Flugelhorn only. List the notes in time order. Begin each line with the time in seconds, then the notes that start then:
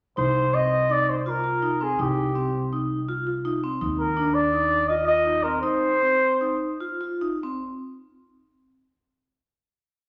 0.18 C5
0.54 D#5
0.91 D5
1.10 C5
1.20 C5
1.29 A#4
1.83 G#4
2.01 G4
3.99 A#4
4.34 D5
4.88 D#5
5.07 D#5
5.43 A#4
5.62 C5